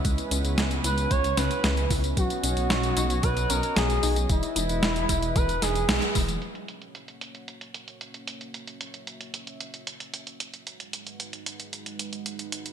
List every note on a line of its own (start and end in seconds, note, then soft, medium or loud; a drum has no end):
0.00 2.13 G#3 medium
0.00 6.38 B3 medium
0.00 4.25 C#4 medium
0.00 2.13 E4 medium
0.00 2.13 B4 medium
0.05 0.16 C#2 loud
0.05 0.30 G#3 medium
0.05 kick loud
0.05 closed hi-hat medium
0.05 tambourine soft
0.18 closed hi-hat soft
0.18 tambourine soft
0.31 0.42 C#2 medium
0.31 0.54 C#4 medium
0.31 closed hi-hat medium
0.31 tambourine medium
0.44 0.56 C#2 loud
0.44 closed hi-hat soft
0.44 tambourine soft
0.58 0.80 C#2 medium
0.58 0.81 G#3 medium
0.58 snare loud
0.58 closed hi-hat medium
0.58 tambourine soft
0.71 closed hi-hat soft
0.71 tambourine soft
0.84 1.07 C#2 loud
0.84 0.98 E4 loud
0.84 1.12 B4 loud
0.84 closed hi-hat medium
0.84 tambourine medium
0.98 closed hi-hat soft
0.98 tambourine soft
1.11 1.33 C#2 medium
1.11 1.36 G#3 medium
1.11 1.39 C#5 loud
1.11 kick loud
1.11 closed hi-hat medium
1.11 tambourine soft
1.24 closed hi-hat soft
1.24 tambourine soft
1.37 1.49 C#2 loud
1.37 1.60 C#4 medium
1.37 1.90 B4 loud
1.37 snare medium
1.37 closed hi-hat medium
1.37 tambourine medium
1.51 closed hi-hat soft
1.51 tambourine soft
1.64 1.86 C#2 loud
1.64 1.87 G#3 medium
1.64 snare loud
1.64 closed hi-hat medium
1.64 tambourine soft
1.77 closed hi-hat soft
1.77 tambourine soft
1.90 2.13 C#2 medium
1.90 2.04 E4 loud
1.90 kick loud
1.90 open hi-hat medium
1.90 tambourine medium
2.04 closed hi-hat soft
2.04 tambourine soft
2.17 2.28 B1 loud
2.17 2.42 F#3 medium
2.17 3.24 F#4 loud
2.17 4.27 F#4 medium
2.17 4.27 C#5 medium
2.17 6.38 D#5 medium
2.17 kick loud
2.17 closed hi-hat medium
2.17 tambourine soft
2.30 closed hi-hat soft
2.30 tambourine soft
2.43 2.55 B1 loud
2.43 2.66 C#4 medium
2.43 closed hi-hat medium
2.43 tambourine medium
2.57 2.68 B1 loud
2.57 closed hi-hat soft
2.57 tambourine soft
2.70 2.92 B1 medium
2.70 2.93 F#3 medium
2.70 snare loud
2.70 closed hi-hat medium
2.70 tambourine soft
2.83 closed hi-hat soft
2.83 tambourine soft
2.97 3.19 B1 loud
2.97 3.11 D#4 loud
2.97 closed hi-hat loud
2.97 tambourine medium
3.10 closed hi-hat soft
3.10 tambourine soft
3.23 3.46 B1 medium
3.23 3.49 F#3 medium
3.23 3.50 B4 loud
3.23 kick loud
3.23 closed hi-hat medium
3.23 tambourine soft
3.37 closed hi-hat soft
3.37 tambourine soft
3.49 3.61 B1 loud
3.49 3.73 C#4 medium
3.49 3.77 A#4 loud
3.49 closed hi-hat medium
3.49 tambourine medium
3.63 closed hi-hat soft
3.63 tambourine soft
3.76 3.99 B1 loud
3.76 3.99 F#3 medium
3.76 4.16 G#4 loud
3.76 snare loud
3.76 closed hi-hat medium
3.76 tambourine soft
3.90 closed hi-hat soft
3.90 tambourine soft
4.03 4.25 B1 medium
4.03 4.17 D#4 loud
4.03 open hi-hat medium
4.03 tambourine medium
4.16 closed hi-hat soft
4.16 tambourine soft
4.29 4.41 E1 loud
4.29 4.55 G#3 medium
4.29 6.40 G#3 medium
4.29 5.37 E4 loud
4.29 6.40 E4 medium
4.29 6.40 B4 medium
4.29 kick loud
4.29 closed hi-hat medium
4.29 tambourine soft
4.43 closed hi-hat soft
4.43 tambourine soft
4.56 4.67 E1 loud
4.56 4.79 D#4 medium
4.56 closed hi-hat medium
4.56 tambourine medium
4.69 4.80 E1 loud
4.69 closed hi-hat soft
4.69 tambourine soft
4.83 5.05 E1 medium
4.83 5.05 G#3 medium
4.83 snare loud
4.83 closed hi-hat medium
4.83 tambourine soft
4.96 closed hi-hat soft
4.96 tambourine soft
5.09 5.32 E1 loud
5.09 5.23 E4 loud
5.09 kick medium
5.09 closed hi-hat medium
5.09 tambourine medium
5.23 closed hi-hat soft
5.23 tambourine soft
5.35 5.58 E1 medium
5.35 5.61 G#3 medium
5.35 5.63 B4 loud
5.35 kick loud
5.35 closed hi-hat medium
5.35 tambourine soft
5.49 closed hi-hat soft
5.49 tambourine soft
5.62 5.85 E1 medium
5.62 5.85 D#4 medium
5.62 6.15 G#4 loud
5.62 snare medium
5.62 closed hi-hat medium
5.62 tambourine medium
5.75 closed hi-hat soft
5.75 tambourine soft
5.89 6.00 B1 medium
5.89 6.12 G#3 medium
5.89 snare loud
5.89 closed hi-hat medium
5.89 tambourine soft
6.02 closed hi-hat soft
6.02 tambourine soft
6.15 6.38 E1 medium
6.15 6.29 E4 loud
6.15 kick loud
6.15 open hi-hat medium
6.15 tambourine medium
6.29 closed hi-hat soft
6.29 tambourine soft
6.42 10.63 A#3 medium
6.42 10.63 C#4 medium
6.42 10.63 F#4 medium
6.42 10.62 C#5 medium
6.42 8.52 F#5 medium
6.42 closed hi-hat medium
6.55 closed hi-hat soft
6.68 closed hi-hat medium
6.82 closed hi-hat soft
6.95 closed hi-hat medium
7.08 closed hi-hat soft
7.21 closed hi-hat medium
7.35 closed hi-hat soft
7.48 closed hi-hat medium
7.61 closed hi-hat soft
7.74 closed hi-hat medium
7.88 closed hi-hat soft
8.01 closed hi-hat medium
8.14 closed hi-hat soft
8.28 closed hi-hat medium
8.41 closed hi-hat soft
8.54 10.65 E5 medium
8.54 closed hi-hat medium
8.67 closed hi-hat soft
8.81 closed hi-hat medium
8.94 closed hi-hat soft
9.07 closed hi-hat medium
9.21 closed hi-hat soft
9.34 closed hi-hat medium
9.47 closed hi-hat soft
9.61 closed hi-hat medium
9.74 closed hi-hat soft
9.87 closed hi-hat medium
10.00 closed hi-hat soft
10.14 closed hi-hat medium
10.27 closed hi-hat soft
10.40 closed hi-hat medium
10.54 closed hi-hat soft
10.67 12.73 G#3 medium
10.67 12.73 D#4 medium
10.67 12.73 F#4 medium
10.67 12.73 B4 medium
10.67 12.73 F#5 medium
10.67 closed hi-hat medium
10.80 closed hi-hat soft
10.93 closed hi-hat medium
11.07 closed hi-hat soft
11.20 closed hi-hat medium
11.33 closed hi-hat soft
11.46 closed hi-hat medium
11.60 closed hi-hat soft
11.73 closed hi-hat medium
11.86 closed hi-hat soft
11.99 closed hi-hat medium
12.13 closed hi-hat soft
12.26 closed hi-hat medium
12.39 closed hi-hat soft
12.52 closed hi-hat medium
12.66 closed hi-hat soft